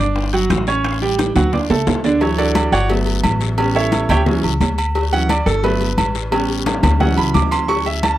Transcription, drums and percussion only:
0.16 high bongo, high conga, long guiro
0.33 high conga, high timbale
0.50 high bongo, low bongo, high conga, high timbale, short guiro
0.67 high conga, short guiro
0.84 high bongo, high conga, high timbale, long guiro
1.02 high bongo, high conga
1.18 high bongo, high conga, high timbale, short guiro
1.36 high bongo, low conga, high timbale, short guiro
1.53 high bongo, high conga, low conga, long guiro
1.70 high conga, low timbale
1.87 high bongo, low bongo, high conga, low timbale, short guiro
2.04 high bongo, high conga, low timbale, short guiro
2.21 cowbell, high conga, low agogo, long guiro
2.38 high conga, low agogo
2.55 cowbell, high conga, low agogo, short guiro
2.73 cowbell, short guiro
2.90 cowbell, high conga, low agogo, long guiro
3.06 high conga, low agogo
3.23 cowbell, high conga, low agogo, short guiro
3.41 cowbell, high conga, short guiro
3.58 cowbell, high conga, low agogo, long guiro
3.75 high conga
3.92 cowbell, high conga, low agogo, short guiro
4.09 cowbell, low conga, low agogo, short guiro
4.26 cowbell, high conga, low conga, long guiro
4.44 high conga, low agogo
4.61 cowbell, high conga, low timbale, low agogo, short guiro
4.78 high conga, low agogo, short guiro
4.95 cowbell, high conga, low agogo, long guiro
5.12 high conga, low agogo
5.29 cowbell, high conga, low agogo, short guiro
5.47 cowbell, short guiro
5.64 cowbell, high conga, low agogo, long guiro
5.80 high conga, low agogo
5.98 cowbell, high conga, low agogo, short guiro
6.15 cowbell, high conga, short guiro
6.32 cowbell, high conga, low agogo, long guiro
6.49 high conga
6.66 cowbell, high bongo, high conga, low agogo, short guiro
6.83 cowbell, high bongo, low conga, low agogo, short guiro
7.00 cowbell, low bongo, high conga, low conga, long guiro
7.17 high conga, low agogo
7.34 cowbell, low bongo, high conga, low agogo, short guiro
7.51 low bongo, high conga, low agogo, short guiro
7.69 cowbell, high conga, low agogo, long guiro
7.86 high conga, low agogo
8.03 cowbell, high conga, low agogo, short guiro

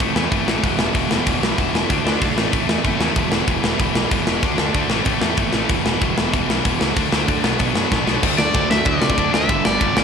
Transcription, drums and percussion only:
0.00 kick
0.16 snare
0.32 kick, open hi-hat
0.48 snare
0.64 kick, open hi-hat
0.79 snare
0.95 kick, open hi-hat
1.11 snare
1.27 kick, open hi-hat
1.43 snare
1.58 kick, open hi-hat
1.75 snare
1.90 kick, open hi-hat
2.07 snare
2.22 kick, open hi-hat
2.38 snare
2.53 kick, open hi-hat
2.69 snare
2.85 kick, open hi-hat
3.01 snare
3.16 kick, open hi-hat
3.32 snare
3.48 kick, open hi-hat
3.64 snare
3.80 kick, open hi-hat
3.95 snare
4.11 kick, open hi-hat
4.27 snare
4.43 kick, open hi-hat
4.58 snare
4.74 kick, open hi-hat
4.90 snare
5.05 kick, open hi-hat
5.21 snare
5.37 kick, open hi-hat
5.53 snare
5.69 kick, open hi-hat
5.86 snare
6.02 kick, open hi-hat
6.18 snare
6.34 kick, open hi-hat
6.50 snare
6.65 kick, open hi-hat
6.81 snare
6.97 kick, open hi-hat
7.12 snare
7.28 kick, open hi-hat
7.44 snare
7.59 kick, open hi-hat
7.75 snare
7.92 kick, snare
8.07 snare
8.23 kick, crash
8.38 snare
8.54 kick, ride
8.71 snare
8.85 kick, ride
9.02 snare
9.10 kick
9.18 kick, ride
9.34 snare
9.49 kick, ride
9.65 snare
9.81 kick, ride
9.97 snare

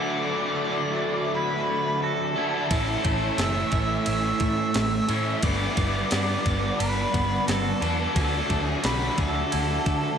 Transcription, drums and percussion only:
2.71 kick, ride
3.05 kick, ride
3.38 snare, ride
3.72 kick, ride
4.06 ride
4.40 kick, ride
4.74 snare, ride
5.09 ride
5.43 kick, ride
5.77 kick, ride
6.11 snare, ride
6.46 kick, ride
6.80 ride
7.14 kick, snare, ride
7.48 snare, ride
7.82 ride
8.16 kick, ride
8.50 kick, ride
8.84 snare, ride
9.18 kick, ride
9.52 ride
9.86 kick, ride

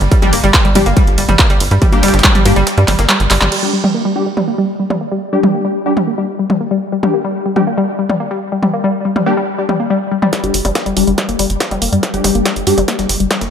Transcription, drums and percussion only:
0.01 closed hi-hat
0.12 kick, closed hi-hat, ride
0.22 closed hi-hat, mid tom
0.33 open hi-hat, ride
0.44 closed hi-hat
0.54 kick, snare, clap, closed hi-hat, ride
0.65 closed hi-hat
0.75 closed hi-hat, open hi-hat, mid tom, ride
0.86 closed hi-hat
0.97 kick, closed hi-hat, ride
1.07 closed hi-hat
1.18 closed hi-hat, open hi-hat, ride
1.29 closed hi-hat, mid tom
1.39 kick, snare, clap, closed hi-hat, ride
1.50 closed hi-hat
1.60 closed hi-hat, open hi-hat, ride
1.71 closed hi-hat
1.82 kick, closed hi-hat, mid tom, ride
1.92 closed hi-hat
2.03 snare, closed hi-hat, open hi-hat, ride
2.08 snare, closed hi-hat
2.14 snare, closed hi-hat
2.19 snare, closed hi-hat
2.24 kick, snare, clap, closed hi-hat, ride
2.35 closed hi-hat, mid tom
2.45 snare, closed hi-hat, open hi-hat, ride
2.56 closed hi-hat
2.67 snare, closed hi-hat, ride
2.78 closed hi-hat
2.88 clap, closed hi-hat, open hi-hat, mid tom, ride
2.99 snare, closed hi-hat
3.09 clap, closed hi-hat, ride
3.20 closed hi-hat
3.31 snare, clap, closed hi-hat, open hi-hat, ride
3.41 clap, closed hi-hat, mid tom
3.52 crash
3.84 mid tom
4.37 mid tom
4.90 mid tom
5.43 mid tom
5.97 mid tom
6.50 mid tom
7.03 mid tom
7.56 mid tom
8.10 mid tom
8.63 mid tom
9.16 mid tom
9.69 mid tom
10.22 mid tom
10.33 kick, snare, closed hi-hat
10.44 closed hi-hat
10.54 open hi-hat
10.65 closed hi-hat, mid tom
10.75 kick, snare, closed hi-hat
10.86 closed hi-hat
10.97 closed hi-hat, open hi-hat
11.07 closed hi-hat
11.18 kick, snare, closed hi-hat, mid tom
11.29 closed hi-hat
11.39 closed hi-hat, open hi-hat
11.50 closed hi-hat
11.60 kick, snare, closed hi-hat
11.71 closed hi-hat, mid tom
11.82 closed hi-hat, open hi-hat
11.93 closed hi-hat
12.03 kick, snare, closed hi-hat
12.14 closed hi-hat
12.24 snare, closed hi-hat, open hi-hat, mid tom
12.35 closed hi-hat
12.45 kick, snare, closed hi-hat
12.56 closed hi-hat
12.67 snare, closed hi-hat, open hi-hat
12.78 closed hi-hat, mid tom
12.88 kick, snare, closed hi-hat
12.99 snare, closed hi-hat
13.09 snare, closed hi-hat, open hi-hat
13.20 closed hi-hat
13.31 kick, snare, closed hi-hat, mid tom
13.41 snare, closed hi-hat

